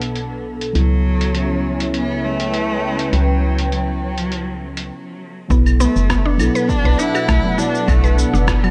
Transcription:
Already playing: B1 B2 F#3 B3 D4 E4 A4 F#5
0.02 closed hi-hat
0.16 closed hi-hat
0.61 closed hi-hat
0.73 C#2 C#3 F#3 B3 E4, closed hi-hat
0.77 A4
1.01 E4
1.10 C#4
1.21 closed hi-hat
1.35 closed hi-hat
1.80 closed hi-hat
1.94 B3, closed hi-hat
2.07 B4
2.15 G5
2.24 A3
2.40 closed hi-hat
2.54 closed hi-hat
2.99 closed hi-hat
3.13 C#2 F#3, closed hi-hat
3.59 closed hi-hat
3.72 F#3, closed hi-hat
4.18 closed hi-hat
4.32 closed hi-hat
4.77 closed hi-hat
5.48 B1 B2 F#3 B3 E4 A4, kick, cabasa
5.66 cabasa, claves
5.72 B3
5.80 A3 B3, cabasa
5.96 F#1, cabasa
6.09 B3, kick, cross-stick, cabasa
6.17 A3
6.24 B3 D4
6.36 B1 F#3 B3 D4 F#5, cabasa, claves
6.40 E4 A4
6.55 B4, cabasa
6.66 D4 A4, kick, cabasa
6.85 B1 B4
6.98 D4 E4, cabasa
7.15 F#4, cabasa, claves
7.28 B1 A3, kick, cross-stick, cabasa
7.43 F#3 B3 E4 B4
7.57 F#3 B3 D4 E4 D5, cabasa
7.75 cabasa
7.86 B1 F#3 A3 B3 E4 A4, kick, cabasa, claves
8.04 B4, cabasa
8.17 B3, cabasa
8.34 F#1 D4, cabasa
8.47 kick, cross-stick, cabasa
8.63 F#3, claves

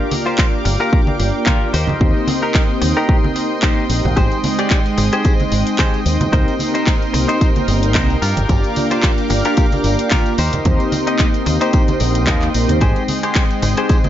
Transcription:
Already playing: A#3 D4 F4 G4 A#4 D5 F5 G5 D6
0.11 open hi-hat, high conga
0.26 F4 G4 C5
0.38 kick, clap
0.65 G1, muted clean electric guitar stroke, open hi-hat, high conga
0.80 F4 G4 A#4
0.92 A#3 D4 F4 G4 D5, kick
1.07 high conga
1.19 G1, muted clean electric guitar stroke, open hi-hat
1.46 F4 G4 A#4, kick, clap, high conga
1.73 D#2 D#4 G4 C5 D#5 C6, open hi-hat
1.87 high conga, low conga
1.99 D#2 A#3 C4 D#4 G4 C5, kick, low conga
2.28 open hi-hat, high conga
2.42 D#4 G4 A#4
2.54 kick, clap
2.82 D#2, muted clean electric guitar stroke, open hi-hat, high conga
2.97 D#4 G4 A#4
3.08 A#3 C4 D#4 G4 C5, kick
3.24 high conga
3.36 muted clean electric guitar stroke, open hi-hat
3.62 D#4 G4 C5, kick, clap, high conga
3.89 A#1, open hi-hat
4.04 A#1, muted clean electric guitar stroke, high conga, low conga
4.16 G#1 G#3 C4 D#4 G4 G#4 C5 G5, kick, closed hi-hat, tambourine, low conga
4.32 closed hi-hat, tambourine
4.44 open hi-hat, tambourine, high conga
4.59 G4 G#4 D5, closed hi-hat, tambourine
4.70 kick, clap, closed hi-hat, tambourine
4.86 closed hi-hat, tambourine
4.98 G#1, muted clean electric guitar stroke, open hi-hat, tambourine, high conga
5.13 G4 G#4 C5, closed hi-hat, tambourine
5.23 G#3 C4 D#4 C5 G5, kick, closed hi-hat, tambourine
5.40 closed hi-hat, tambourine, high conga
5.52 G#1, muted clean electric guitar stroke, open hi-hat, tambourine
5.67 closed hi-hat, tambourine
5.78 G4 G#4 C5, kick, clap, closed hi-hat, tambourine, high conga
5.94 closed hi-hat, tambourine
6.06 D#2, open hi-hat, tambourine
6.20 muted clean electric guitar stroke, closed hi-hat, tambourine, high conga, low conga
6.31 C2 A#3 C4 D#4 G4 A#4 C5 C6, kick, closed hi-hat, tambourine, low conga
6.48 closed hi-hat, tambourine
6.59 open hi-hat, tambourine, high conga
6.74 D#4 A#4 C5, closed hi-hat, tambourine
6.87 kick, clap, closed hi-hat, tambourine
7.02 closed hi-hat, tambourine
7.14 C2, muted clean electric guitar stroke, open hi-hat, tambourine, high conga
7.28 D#4 A#4 C5, closed hi-hat, tambourine
7.40 A#3 C4 D#4 G4 C5, kick, closed hi-hat, tambourine
7.56 closed hi-hat, tambourine, high conga
7.68 G1, muted clean electric guitar stroke, open hi-hat, tambourine
7.83 closed hi-hat, tambourine
7.95 C2 D#4 A#4 C5, kick, clap, closed hi-hat, tambourine, high conga
8.10 closed hi-hat, tambourine
8.22 G2 F4 G4 A#4 F5 D6, open hi-hat, tambourine
8.37 G1, closed hi-hat, tambourine, high conga, low conga
8.48 G1 A#3 D4 F4 G4 D5, kick, closed hi-hat, tambourine, low conga
8.63 closed hi-hat, tambourine
8.76 open hi-hat, tambourine, high conga
8.91 F4 G4 C5, closed hi-hat, tambourine
9.03 kick, clap, closed hi-hat, tambourine
9.18 closed hi-hat, tambourine
9.30 G1, muted clean electric guitar stroke, open hi-hat, tambourine, high conga
9.45 F4 G4 A#4, closed hi-hat, tambourine
9.56 A#3 D4 F4 G4 D5, kick, closed hi-hat, tambourine
9.72 closed hi-hat, tambourine, high conga
9.84 G1, muted clean electric guitar stroke, open hi-hat, tambourine
9.99 closed hi-hat, tambourine
10.11 F4 G4 A#4, kick, clap, closed hi-hat, tambourine, high conga
10.26 closed hi-hat, tambourine
10.38 D#2 D#4 G4 C5 D#5 G5 C6, open hi-hat, tambourine
10.53 closed hi-hat, tambourine, high conga, low conga
10.64 D#2 A#3 C4 D#4 G4 C5, kick, closed hi-hat, tambourine, low conga
10.80 closed hi-hat, tambourine
10.92 open hi-hat, tambourine, high conga
11.07 D#4 G4 D#5, closed hi-hat, tambourine
11.19 kick, clap, closed hi-hat, tambourine
11.34 closed hi-hat, tambourine
11.46 D#2, muted clean electric guitar stroke, open hi-hat, tambourine, high conga
11.61 D#4 G4 C5, closed hi-hat, tambourine
11.73 A#3 C4 D#4 G4 C5, kick, closed hi-hat, tambourine
11.88 closed hi-hat, tambourine, high conga
12.00 A#1, muted clean electric guitar stroke, open hi-hat, tambourine
12.15 closed hi-hat, tambourine
12.27 D#2 D#4 G4 A#4, kick, clap, closed hi-hat, tambourine, high conga
12.42 A#3 C4 D#4 G4 C5, clap, closed hi-hat, tambourine
12.54 A#1 A#3 C4 D#4 G4 C5, open hi-hat, tambourine
12.69 D#2, muted clean electric guitar stroke, closed hi-hat, tambourine, high conga, low conga
12.81 G#1 G#3 C4 D#4 G4 G#4 C5 G5, kick, closed hi-hat, tambourine, low conga
12.96 closed hi-hat, tambourine
13.08 open hi-hat, tambourine, high conga
13.23 G4 G#4 C5, closed hi-hat, tambourine
13.35 kick, clap, closed hi-hat, tambourine
13.51 closed hi-hat, tambourine
13.62 G#1, muted clean electric guitar stroke, open hi-hat, tambourine, high conga
13.77 G4 G#4 C5, closed hi-hat, tambourine
13.89 G#3 C4 D#4 C5 G5, kick, closed hi-hat, tambourine
14.04 closed hi-hat, tambourine, high conga

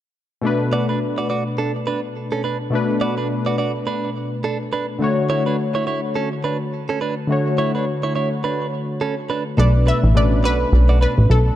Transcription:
0.42 B2 A3 D4
0.47 B4
0.73 F#4 D5
0.89 D4 B4
1.18 F#4 D5
1.30 F#4 D5
1.58 D4 A4
1.87 D4 B4
2.32 C#4 A4
2.44 D4 B4
2.70 B2 A3 D4
2.75 B4
3.01 F#4 D5
3.18 D4 B4
3.46 F#4 D5
3.58 F#4 D5
3.87 D4 B4
4.44 D4 A4
4.73 D4 B4
4.99 D3 A3 F#4
5.04 C#5
5.30 E4 C#5
5.46 D4 B4
5.75 E4 C#5
5.87 E4 C#5
6.15 C#4 A4
6.44 D4 B4
6.89 C#4 A4
7.01 D4 B4
7.27 D3 A3 F#4
7.32 C#5
7.58 E4 C#5
7.75 D4 B4
8.03 E4 C#5
8.16 E4 C#5
8.44 D4 B4
9.01 C#4 A4
9.30 D4 B4
9.57 B1 B2 A3 D4 A4 B4 D5
9.87 D4 B4 E5
10.03 A1
10.14 B2 A3 C#4 B4 D5
10.22 D4
10.44 B1 F#4 B4 D5
10.73 B1
10.89 F#4 D5
11.01 D4 B4
11.18 A1
11.30 B1 A4

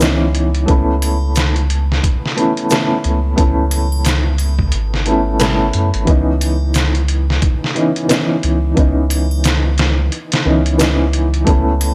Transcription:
Already playing: C#2 D#4
0.00 E3 B3 C#4 D#4, snare, closed hi-hat, shaker
0.35 closed hi-hat
0.55 closed hi-hat
0.66 C#2 A3 B3 C#4, kick, closed hi-hat
0.71 E4
1.02 closed hi-hat, triangle
1.35 snare, closed hi-hat, shaker
1.56 closed hi-hat
1.70 closed hi-hat
1.92 snare
2.03 kick, closed hi-hat
2.26 snare
2.36 A3 B3 C#4 E4, closed hi-hat
2.57 closed hi-hat
2.70 A3 B3 C#4 E4, snare, closed hi-hat, shaker
3.04 C#2, closed hi-hat
3.36 C#2 A3 B3 C#4, kick, closed hi-hat
3.40 E4
3.71 closed hi-hat, triangle
3.92 triangle
4.05 snare, closed hi-hat, shaker
4.38 closed hi-hat, triangle
4.59 kick
4.72 G#1, closed hi-hat
4.94 snare
5.06 A3 B3 C#4 E4, closed hi-hat
5.39 A3 B3 C#4 E4, snare, closed hi-hat, shaker
5.73 F#2, closed hi-hat
5.94 G#1, closed hi-hat
6.05 C#2 E3 B3 C#4, kick, closed hi-hat
6.10 D#4
6.41 closed hi-hat, triangle
6.74 snare, closed hi-hat, shaker
6.95 closed hi-hat
7.08 closed hi-hat
7.30 snare
7.42 kick, closed hi-hat
7.64 snare
7.75 E3 B3 C#4 D#4, closed hi-hat
7.96 closed hi-hat
8.08 E3 B3 C#4 D#4, snare, closed hi-hat, shaker
8.43 C#2, closed hi-hat
8.75 C#2 E3 B3 C#4, kick, closed hi-hat
8.80 D#4
9.10 closed hi-hat, triangle
9.31 triangle
9.44 snare, closed hi-hat, shaker
9.78 snare, closed hi-hat
10.12 closed hi-hat
10.32 snare, closed hi-hat
10.45 C#2 E3 B3 C#4 D#4
10.66 closed hi-hat
10.78 E3 B3 C#4 D#4, snare, closed hi-hat, shaker
11.13 closed hi-hat
11.34 closed hi-hat
11.45 C#2 A3 B3 C#4, kick, closed hi-hat
11.49 E4
11.81 closed hi-hat, triangle

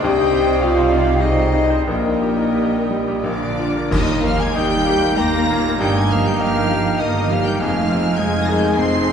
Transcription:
0.02 C2 C3 G3 G4 C5 D#5 G5
0.19 D#4
0.33 G4
0.47 C5
0.61 F4 G4 C5 D5 F5 G5
0.77 C5
0.91 D#4
1.07 G4
1.21 G3 D#4 G#4 C5 D#5
1.39 G4
1.54 D#4 G4
1.70 C5
1.87 A#1 A#2 G3 A#3 A#4 D#5 G5
2.06 D#4
2.22 G4
2.37 D#4
2.55 G4
2.71 D#4
2.90 G3
3.08 G4
3.23 A#1 A#2 D3 F3 A#4 D5 F5 D6
3.43 D4
3.59 F4
3.76 A#4
3.91 D#2 D#3 A#3 D#4 G4 D#5 D#6, concert bass drum, crash
4.10 D#4 A#4
4.23 F3 A#3 G4 F5 F6
4.38 G#3 D#4 A#4 G#5 G#6
4.54 D#2 G3 A#3 D#4 G4 D#5 G5 G6
4.73 D#4 A#4
4.84 G4 F5
4.89 A#3 G4
5.04 D#4 A#4
5.17 D#2 A#3 G4 G5 A#5 A#6
5.36 D#4 A#4
5.48 A#2 A#3 G4 F5
5.66 D#4 A#4
5.80 G1 G2 G3 A#3 G4 D#5 G5 G6
5.95 G#3 D#4 A#4 G#5 G#6
6.11 F3 A#3 G4 F5 F6
6.25 G3 D#4 A#4 G5 G6
6.40 G1 F3 A#3 D#4 G4 F5 G5 F6
6.57 D#4 A#4
6.71 A#3 G4
6.88 D#4 A#4
7.00 G1 D#3 A#3 A#4 D#5 D#6
7.04 A#3 G4
7.18 D#4 A#4
7.29 F3 G3 F5 F6
7.34 A#3 G4
7.44 G3 D#4 A#4 G5 G6
7.59 F1 F2 F3 G#3 D#4 G#4 F5 G#5 F6
7.63 F4
7.78 D#4 F4
7.91 C4 F4 G#4
8.07 D#4 F4
8.17 F1 G#3 D#4 F4 G#4 F5 G#5 G#6
8.35 D#4 F4
8.43 A#6
8.48 F4 G#4 A#4 G#6
8.59 G6
8.65 D#4 F4 G#6
8.75 G#5 C7
8.79 F1 C4 F4 G#4 C6
8.96 D#4 F4
9.09 G5

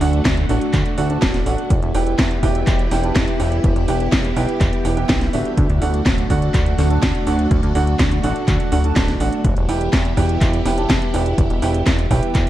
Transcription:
Already playing: A3 D4 F#4
0.01 D2 D4 F#4 A4 F#5, open hi-hat
0.13 closed hi-hat
0.25 D2, kick, snare, clap, closed hi-hat
0.37 closed hi-hat
0.49 A1 D4 F#4 A4 F#5, open hi-hat
0.61 closed hi-hat
0.74 D2, kick, clap, closed hi-hat
0.86 closed hi-hat
0.98 D2 D4 F#4 A4 F#5, open hi-hat
1.10 D4 F#4 A4 A5, closed hi-hat
1.22 D1, kick, snare, clap, closed hi-hat
1.34 snare, closed hi-hat
1.46 A1 D4 F#4 A4 F#5, open hi-hat
1.58 closed hi-hat
1.70 E1 B3 E4 G4, kick, closed hi-hat
1.82 E1, closed hi-hat
1.94 E1 E4 G4 B4 G5, open hi-hat
2.07 closed hi-hat
2.19 E2, kick, snare, clap, closed hi-hat
2.31 closed hi-hat
2.43 E1 E4 G4 B4 G5, kick, open hi-hat
2.55 closed hi-hat
2.67 E1, kick, clap, closed hi-hat
2.79 closed hi-hat
2.91 E1 E4 G4 B4 G5, snare, open hi-hat
3.03 E4 G4 B4 A5, closed hi-hat
3.15 E1, kick, snare, clap, closed hi-hat
3.28 closed hi-hat
3.40 E1 E4 G4 B4 G5, open hi-hat
3.52 closed hi-hat
3.64 E1, kick, closed hi-hat
3.76 E1, closed hi-hat
3.88 E1 E4 G4 B4 G5, open hi-hat
4.00 closed hi-hat
4.12 E1, kick, snare, clap, closed hi-hat
4.24 closed hi-hat
4.36 B1 E4 G4 B4 G5, open hi-hat
4.49 closed hi-hat
4.61 E1, kick, clap, closed hi-hat
4.73 closed hi-hat
4.85 E1 E4 G4 B4 G5, open hi-hat
4.97 E4 G4 B4 G5, closed hi-hat
5.09 B1, kick, snare, clap, closed hi-hat
5.21 snare, closed hi-hat
5.33 D1 D4 F#4 A4 E5, open hi-hat
5.45 closed hi-hat
5.57 D2 A3 D4 F#4, kick, closed hi-hat
5.70 D2, closed hi-hat
5.82 D2 D4 F#4 A4 F#5, open hi-hat
5.94 closed hi-hat
6.06 D1, kick, snare, clap, closed hi-hat
6.18 closed hi-hat
6.30 D2 D4 F#4 A4 F#5, kick, open hi-hat
6.42 closed hi-hat
6.54 D2, kick, clap, closed hi-hat
6.66 closed hi-hat
6.78 D2 D4 F#4 A4 F#5, snare, open hi-hat
6.90 D4 F#4 A4 A5, closed hi-hat
7.03 D2, kick, snare, clap, closed hi-hat
7.15 closed hi-hat
7.27 D2 D4 F#4 A4 F#5, open hi-hat
7.39 closed hi-hat
7.51 D2, kick, closed hi-hat
7.63 D2, closed hi-hat
7.75 D2 D4 F#4 A4 F#5, open hi-hat
7.87 closed hi-hat
7.99 D2, kick, snare, clap, closed hi-hat
8.11 closed hi-hat
8.23 A1 D4 F#4 A4 F#5, open hi-hat
8.36 closed hi-hat
8.48 D2, kick, clap, closed hi-hat
8.60 closed hi-hat
8.72 D2 D4 F#4 A4 F#5, open hi-hat
8.84 D4 F#4 A4 A5, closed hi-hat
8.96 D1, kick, snare, clap, closed hi-hat
9.08 snare, closed hi-hat
9.20 A1 D4 F#4 A4 F#5, open hi-hat
9.32 closed hi-hat
9.44 E1 B3 E4 G4, kick, closed hi-hat
9.57 E1, closed hi-hat
9.69 E1 E4 G4 B4 G5, open hi-hat
9.81 closed hi-hat
9.93 E2, kick, snare, clap, closed hi-hat
10.05 closed hi-hat
10.17 E1 E4 G4 B4 G5, kick, open hi-hat
10.29 closed hi-hat
10.41 E1, kick, clap, closed hi-hat
10.53 closed hi-hat
10.65 E1 E4 G4 B4 G5, snare, open hi-hat
10.77 E4 G4 B4 A5, closed hi-hat
10.90 E1, kick, snare, clap, closed hi-hat
11.02 closed hi-hat
11.14 E1 E4 G4 B4 G5, open hi-hat
11.26 closed hi-hat
11.38 E1, kick, closed hi-hat
11.50 E1, closed hi-hat
11.62 E1 E4 G4 B4 G5, open hi-hat
11.74 closed hi-hat
11.86 E1, kick, snare, clap, closed hi-hat
11.99 closed hi-hat
12.11 B1 E4 G4 B4 G5, kick, open hi-hat
12.23 closed hi-hat
12.35 E1, kick, clap, closed hi-hat

